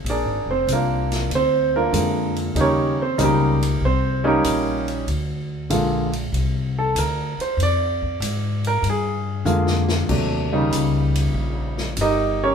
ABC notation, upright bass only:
X:1
M:4/4
L:1/8
Q:"Swing" 1/4=96
K:Bbmix
V:1 name="Upright bass" clef=bass
(3B,,, A,,, F,,, C,,2 D,,2 F,,2 | E,,2 _D,,2 C,,2 B,,,2 | D,,2 B,,,2 C,,2 D,, z | F,,2 A,,2 G,,2 F,,2 |
E,,2 _D,,2 B,,,2 G,,,2 |]